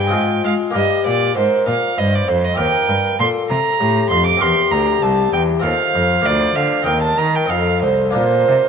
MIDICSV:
0, 0, Header, 1, 5, 480
1, 0, Start_track
1, 0, Tempo, 612870
1, 591, Time_signature, 3, 2, 24, 8
1, 5383, Tempo, 646552
1, 6730, End_track
2, 0, Start_track
2, 0, Title_t, "Violin"
2, 0, Program_c, 0, 40
2, 0, Note_on_c, 0, 79, 62
2, 346, Note_off_c, 0, 79, 0
2, 351, Note_on_c, 0, 77, 63
2, 414, Note_off_c, 0, 77, 0
2, 593, Note_on_c, 0, 75, 65
2, 828, Note_off_c, 0, 75, 0
2, 833, Note_on_c, 0, 74, 64
2, 1066, Note_off_c, 0, 74, 0
2, 1077, Note_on_c, 0, 72, 68
2, 1307, Note_off_c, 0, 72, 0
2, 1318, Note_on_c, 0, 77, 67
2, 1554, Note_on_c, 0, 75, 60
2, 1566, Note_off_c, 0, 77, 0
2, 1684, Note_on_c, 0, 74, 60
2, 1696, Note_off_c, 0, 75, 0
2, 1790, Note_on_c, 0, 72, 66
2, 1802, Note_off_c, 0, 74, 0
2, 1912, Note_on_c, 0, 75, 67
2, 1924, Note_off_c, 0, 72, 0
2, 2024, Note_off_c, 0, 75, 0
2, 2028, Note_on_c, 0, 79, 77
2, 2493, Note_off_c, 0, 79, 0
2, 2507, Note_on_c, 0, 84, 73
2, 2570, Note_off_c, 0, 84, 0
2, 2739, Note_on_c, 0, 82, 82
2, 3206, Note_off_c, 0, 82, 0
2, 3210, Note_on_c, 0, 84, 78
2, 3331, Note_off_c, 0, 84, 0
2, 3339, Note_on_c, 0, 86, 76
2, 3454, Note_on_c, 0, 84, 81
2, 3466, Note_off_c, 0, 86, 0
2, 3693, Note_on_c, 0, 82, 76
2, 3704, Note_off_c, 0, 84, 0
2, 3931, Note_on_c, 0, 81, 68
2, 3943, Note_off_c, 0, 82, 0
2, 4170, Note_off_c, 0, 81, 0
2, 4174, Note_on_c, 0, 79, 73
2, 4237, Note_off_c, 0, 79, 0
2, 4414, Note_on_c, 0, 77, 76
2, 4900, Note_on_c, 0, 74, 77
2, 4912, Note_off_c, 0, 77, 0
2, 5134, Note_on_c, 0, 77, 66
2, 5145, Note_off_c, 0, 74, 0
2, 5370, Note_off_c, 0, 77, 0
2, 5375, Note_on_c, 0, 79, 70
2, 5491, Note_off_c, 0, 79, 0
2, 5496, Note_on_c, 0, 81, 71
2, 5611, Note_on_c, 0, 82, 69
2, 5622, Note_off_c, 0, 81, 0
2, 5741, Note_on_c, 0, 79, 59
2, 5752, Note_off_c, 0, 82, 0
2, 5847, Note_on_c, 0, 77, 69
2, 5858, Note_off_c, 0, 79, 0
2, 6085, Note_off_c, 0, 77, 0
2, 6090, Note_on_c, 0, 72, 59
2, 6327, Note_off_c, 0, 72, 0
2, 6331, Note_on_c, 0, 72, 74
2, 6730, Note_off_c, 0, 72, 0
2, 6730, End_track
3, 0, Start_track
3, 0, Title_t, "Flute"
3, 0, Program_c, 1, 73
3, 0, Note_on_c, 1, 67, 56
3, 101, Note_on_c, 1, 65, 54
3, 112, Note_off_c, 1, 67, 0
3, 585, Note_off_c, 1, 65, 0
3, 590, Note_on_c, 1, 67, 53
3, 1060, Note_off_c, 1, 67, 0
3, 1065, Note_on_c, 1, 70, 59
3, 1536, Note_off_c, 1, 70, 0
3, 1551, Note_on_c, 1, 72, 59
3, 1854, Note_off_c, 1, 72, 0
3, 2033, Note_on_c, 1, 70, 63
3, 2474, Note_off_c, 1, 70, 0
3, 2510, Note_on_c, 1, 69, 59
3, 2977, Note_on_c, 1, 67, 58
3, 2989, Note_off_c, 1, 69, 0
3, 3455, Note_off_c, 1, 67, 0
3, 3459, Note_on_c, 1, 67, 68
3, 4404, Note_off_c, 1, 67, 0
3, 4422, Note_on_c, 1, 72, 68
3, 5384, Note_on_c, 1, 70, 56
3, 5395, Note_off_c, 1, 72, 0
3, 5853, Note_off_c, 1, 70, 0
3, 5859, Note_on_c, 1, 69, 56
3, 6346, Note_on_c, 1, 70, 49
3, 6357, Note_off_c, 1, 69, 0
3, 6730, Note_off_c, 1, 70, 0
3, 6730, End_track
4, 0, Start_track
4, 0, Title_t, "Harpsichord"
4, 0, Program_c, 2, 6
4, 0, Note_on_c, 2, 43, 41
4, 57, Note_on_c, 2, 56, 45
4, 68, Note_on_c, 2, 60, 38
4, 81, Note_off_c, 2, 43, 0
4, 81, Note_on_c, 2, 65, 35
4, 91, Note_on_c, 2, 68, 35
4, 105, Note_on_c, 2, 44, 38
4, 324, Note_off_c, 2, 44, 0
4, 339, Note_off_c, 2, 56, 0
4, 348, Note_on_c, 2, 56, 42
4, 554, Note_on_c, 2, 58, 36
4, 557, Note_off_c, 2, 60, 0
4, 564, Note_off_c, 2, 65, 0
4, 565, Note_on_c, 2, 67, 38
4, 566, Note_off_c, 2, 56, 0
4, 569, Note_off_c, 2, 68, 0
4, 576, Note_on_c, 2, 70, 36
4, 588, Note_on_c, 2, 43, 41
4, 806, Note_off_c, 2, 43, 0
4, 828, Note_on_c, 2, 46, 43
4, 1036, Note_off_c, 2, 58, 0
4, 1044, Note_off_c, 2, 46, 0
4, 1065, Note_on_c, 2, 44, 48
4, 1282, Note_off_c, 2, 44, 0
4, 1307, Note_on_c, 2, 46, 44
4, 1523, Note_off_c, 2, 46, 0
4, 1550, Note_on_c, 2, 43, 43
4, 1765, Note_off_c, 2, 43, 0
4, 1787, Note_on_c, 2, 41, 44
4, 1982, Note_off_c, 2, 67, 0
4, 1988, Note_off_c, 2, 70, 0
4, 1989, Note_on_c, 2, 60, 40
4, 2002, Note_off_c, 2, 41, 0
4, 2003, Note_on_c, 2, 67, 39
4, 2013, Note_on_c, 2, 70, 39
4, 2027, Note_on_c, 2, 39, 42
4, 2241, Note_off_c, 2, 39, 0
4, 2262, Note_on_c, 2, 43, 44
4, 2477, Note_off_c, 2, 43, 0
4, 2504, Note_on_c, 2, 46, 49
4, 2717, Note_off_c, 2, 46, 0
4, 2741, Note_on_c, 2, 48, 46
4, 2956, Note_off_c, 2, 48, 0
4, 2980, Note_on_c, 2, 45, 45
4, 3194, Note_off_c, 2, 45, 0
4, 3220, Note_on_c, 2, 41, 44
4, 3408, Note_off_c, 2, 60, 0
4, 3415, Note_off_c, 2, 67, 0
4, 3420, Note_off_c, 2, 70, 0
4, 3423, Note_on_c, 2, 60, 40
4, 3434, Note_on_c, 2, 67, 38
4, 3435, Note_off_c, 2, 41, 0
4, 3449, Note_on_c, 2, 70, 42
4, 3460, Note_on_c, 2, 40, 44
4, 3677, Note_off_c, 2, 40, 0
4, 3699, Note_on_c, 2, 38, 45
4, 3916, Note_off_c, 2, 38, 0
4, 3940, Note_on_c, 2, 36, 48
4, 4157, Note_off_c, 2, 36, 0
4, 4177, Note_on_c, 2, 40, 46
4, 4373, Note_off_c, 2, 60, 0
4, 4381, Note_off_c, 2, 67, 0
4, 4382, Note_on_c, 2, 60, 38
4, 4388, Note_off_c, 2, 70, 0
4, 4395, Note_on_c, 2, 65, 36
4, 4396, Note_off_c, 2, 40, 0
4, 4407, Note_on_c, 2, 69, 37
4, 4415, Note_on_c, 2, 39, 44
4, 4635, Note_off_c, 2, 39, 0
4, 4662, Note_on_c, 2, 41, 45
4, 4867, Note_on_c, 2, 58, 40
4, 4869, Note_off_c, 2, 60, 0
4, 4869, Note_off_c, 2, 65, 0
4, 4878, Note_on_c, 2, 65, 39
4, 4879, Note_off_c, 2, 41, 0
4, 4881, Note_off_c, 2, 69, 0
4, 4891, Note_on_c, 2, 70, 36
4, 4903, Note_on_c, 2, 38, 42
4, 5119, Note_off_c, 2, 38, 0
4, 5139, Note_on_c, 2, 50, 41
4, 5343, Note_on_c, 2, 60, 40
4, 5351, Note_off_c, 2, 58, 0
4, 5354, Note_on_c, 2, 63, 44
4, 5357, Note_off_c, 2, 65, 0
4, 5357, Note_off_c, 2, 70, 0
4, 5358, Note_off_c, 2, 50, 0
4, 5367, Note_on_c, 2, 70, 41
4, 5376, Note_on_c, 2, 39, 44
4, 5590, Note_off_c, 2, 39, 0
4, 5613, Note_on_c, 2, 51, 43
4, 5806, Note_off_c, 2, 60, 0
4, 5814, Note_on_c, 2, 60, 36
4, 5816, Note_off_c, 2, 63, 0
4, 5825, Note_on_c, 2, 63, 36
4, 5827, Note_off_c, 2, 51, 0
4, 5830, Note_off_c, 2, 70, 0
4, 5836, Note_on_c, 2, 69, 36
4, 5847, Note_on_c, 2, 41, 38
4, 6065, Note_off_c, 2, 41, 0
4, 6087, Note_on_c, 2, 36, 43
4, 6299, Note_on_c, 2, 58, 34
4, 6301, Note_off_c, 2, 60, 0
4, 6307, Note_off_c, 2, 63, 0
4, 6309, Note_off_c, 2, 36, 0
4, 6310, Note_on_c, 2, 62, 35
4, 6312, Note_off_c, 2, 69, 0
4, 6321, Note_on_c, 2, 65, 35
4, 6329, Note_on_c, 2, 46, 38
4, 6553, Note_off_c, 2, 46, 0
4, 6578, Note_on_c, 2, 48, 41
4, 6730, Note_off_c, 2, 48, 0
4, 6730, Note_off_c, 2, 58, 0
4, 6730, Note_off_c, 2, 62, 0
4, 6730, Note_off_c, 2, 65, 0
4, 6730, End_track
5, 0, Start_track
5, 0, Title_t, "Cello"
5, 0, Program_c, 3, 42
5, 0, Note_on_c, 3, 43, 47
5, 108, Note_on_c, 3, 44, 47
5, 120, Note_off_c, 3, 43, 0
5, 345, Note_off_c, 3, 44, 0
5, 350, Note_on_c, 3, 56, 46
5, 413, Note_off_c, 3, 56, 0
5, 590, Note_on_c, 3, 43, 52
5, 652, Note_off_c, 3, 43, 0
5, 835, Note_on_c, 3, 46, 47
5, 1067, Note_off_c, 3, 46, 0
5, 1074, Note_on_c, 3, 44, 49
5, 1136, Note_off_c, 3, 44, 0
5, 1312, Note_on_c, 3, 46, 50
5, 1374, Note_off_c, 3, 46, 0
5, 1549, Note_on_c, 3, 43, 52
5, 1784, Note_off_c, 3, 43, 0
5, 1788, Note_on_c, 3, 41, 51
5, 2021, Note_off_c, 3, 41, 0
5, 2030, Note_on_c, 3, 39, 54
5, 2092, Note_off_c, 3, 39, 0
5, 2264, Note_on_c, 3, 43, 52
5, 2327, Note_off_c, 3, 43, 0
5, 2508, Note_on_c, 3, 46, 53
5, 2570, Note_off_c, 3, 46, 0
5, 2743, Note_on_c, 3, 48, 52
5, 2806, Note_off_c, 3, 48, 0
5, 2983, Note_on_c, 3, 45, 53
5, 3215, Note_off_c, 3, 45, 0
5, 3218, Note_on_c, 3, 41, 53
5, 3453, Note_off_c, 3, 41, 0
5, 3457, Note_on_c, 3, 40, 60
5, 3519, Note_off_c, 3, 40, 0
5, 3696, Note_on_c, 3, 38, 53
5, 3931, Note_off_c, 3, 38, 0
5, 3936, Note_on_c, 3, 36, 54
5, 4170, Note_off_c, 3, 36, 0
5, 4174, Note_on_c, 3, 40, 54
5, 4414, Note_off_c, 3, 40, 0
5, 4417, Note_on_c, 3, 39, 54
5, 4480, Note_off_c, 3, 39, 0
5, 4659, Note_on_c, 3, 41, 51
5, 4892, Note_off_c, 3, 41, 0
5, 4896, Note_on_c, 3, 38, 58
5, 5133, Note_off_c, 3, 38, 0
5, 5137, Note_on_c, 3, 50, 46
5, 5377, Note_off_c, 3, 50, 0
5, 5386, Note_on_c, 3, 39, 50
5, 5609, Note_off_c, 3, 39, 0
5, 5614, Note_on_c, 3, 51, 47
5, 5846, Note_off_c, 3, 51, 0
5, 5852, Note_on_c, 3, 41, 51
5, 6089, Note_on_c, 3, 36, 50
5, 6100, Note_off_c, 3, 41, 0
5, 6331, Note_on_c, 3, 46, 51
5, 6342, Note_off_c, 3, 36, 0
5, 6572, Note_off_c, 3, 46, 0
5, 6576, Note_on_c, 3, 48, 45
5, 6636, Note_off_c, 3, 48, 0
5, 6730, End_track
0, 0, End_of_file